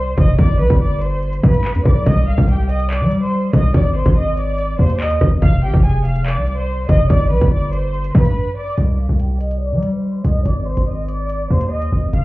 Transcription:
Already playing: C2 C5 C6
0.18 F1 D#5 D#6, kick, closed hi-hat
0.38 G1 D5 D6, kick, closed hi-hat
0.59 B1 B4 B5
0.70 G1, kick, closed hi-hat
0.80 D5 D6
1.02 C5 C6, closed hi-hat
1.23 closed hi-hat
1.33 closed hi-hat
1.43 G2 B4 B5, kick
1.54 closed hi-hat
1.65 clap
1.75 D2, closed hi-hat
1.85 B1 D5 D6, kick, cross-stick
2.06 C2 D#5 D#6, kick, closed hi-hat
2.27 F5 F6
2.38 C2, kick
2.48 G4 G5, closed hi-hat
2.69 D#5 D#6, closed hi-hat
2.80 closed hi-hat
2.90 D5 D6, clap
3.01 G3
3.11 closed hi-hat
3.22 C5 C6
3.53 C2 D#5 D#6, kick, closed hi-hat
3.74 G#1 D5 D6, kick, closed hi-hat
3.95 C5 C6
4.06 G#1, kick, closed hi-hat
4.16 D#5 D#6
4.37 D5 D6, closed hi-hat
4.58 closed hi-hat
4.79 D#2 C5 C6
4.90 closed hi-hat
5.00 D#5 D#6, clap
5.11 closed hi-hat
5.21 G#1, kick, cross-stick
5.42 F1 F5 F6, kick, closed hi-hat
5.63 G#1 G4 G5
5.74 F1, kick
5.84 G#4 G#5, closed hi-hat
6.05 F5 F6, closed hi-hat
6.16 closed hi-hat
6.26 D5 D6, clap
6.36 C2
6.47 closed hi-hat
6.57 C5 C6
6.89 F1 D#5 D#6, kick, closed hi-hat
7.09 G1 D5 D6, kick, closed hi-hat
7.31 B1 B4 B5
7.41 G1, kick, closed hi-hat
7.52 D5 D6
7.73 C5 C6, closed hi-hat
7.94 closed hi-hat
8.04 closed hi-hat
8.15 G2 B4 B5, kick
8.25 closed hi-hat
8.57 D5 D6
8.77 C2 D#5 D#6, closed hi-hat
8.99 F5 F6
9.09 C2
9.20 G4 G5, closed hi-hat
9.40 D#5 D#6, closed hi-hat
9.51 closed hi-hat
9.61 D5 D6
9.72 G3
9.83 closed hi-hat
9.93 C5 C6
10.25 C2 D#5 D#6, closed hi-hat
10.46 G#1 D5 D6, closed hi-hat
10.66 C5 C6
10.77 G#1, closed hi-hat
10.87 D#5 D#6
11.08 D5 D6, closed hi-hat
11.29 closed hi-hat
11.50 D#2 C5 C6
11.61 closed hi-hat
11.71 D#5 D#6
11.82 closed hi-hat
11.92 G#1
12.13 F1 F5 F6, closed hi-hat

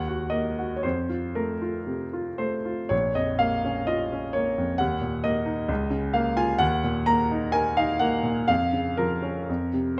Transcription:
Already playing: D#2 F#5
0.08 F#4
0.30 A#3 D#5
0.58 F#4
0.76 C#5
0.83 F2 C5
1.09 F4
1.35 A3 A#4
1.62 F4
1.87 C3
2.13 F4
2.38 A3 C5
2.65 F4
2.89 A#1 C#5
3.15 F2 D#5
3.39 A#3 F5
3.65 C#4
3.87 F4 D#5
4.12 C#4
4.33 A#3 C#5
4.58 F2
4.78 D#2 F#5
5.01 A#2
5.24 A#3 D#5
5.46 D#4
5.68 C#2
5.91 C#3
6.13 A#3 F5
6.37 F4 G#5
6.59 D#2 F#5
6.84 A#2
7.06 A#3 A#5
7.31 D#4
7.52 A#4 G#5
7.77 D#4 F5
7.99 A#3 F#5
8.23 A#2
8.48 F2 F5
8.73 C#3
8.97 F3 A#4
9.22 C#4
9.49 F2
9.73 C3

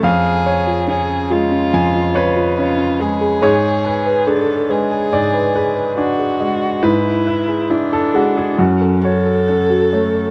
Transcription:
0.03 F2 C#4 G#4 F5
0.46 C#5
0.67 F4
0.88 C#4 G#4
1.30 G#3 F4
1.52 C#4
1.73 F2 G#5
1.94 F4
2.15 C#4 B4 C#5
2.36 F4
2.57 C#4 F4 C#5
2.78 C#4
3.00 G#3 G#4
3.21 G#4
3.42 G#2 G#4 C#5
3.85 B4 G#5
4.06 B4
4.27 D4 G#4 A4
4.69 G#3 G#4 B4
4.91 G#4
5.13 G#2 D5
5.34 B4
5.55 G#4 B4
5.76 B4
5.98 D4 F#4 G#5
6.19 G#4
6.40 G#3 D5
6.61 D5
6.83 G#2 E4 B4
7.27 B4 E5
7.48 G#4
7.70 D4 E4
7.93 A4
8.14 G#3 F#4 G#4
8.37 E4 G#4
8.58 F#2 C#4 F#4
8.81 A4
9.04 F#4 A4 C#5
9.25 A4
9.48 C#4 F#5
9.70 F#4
9.93 A3 C#5
10.15 C#5

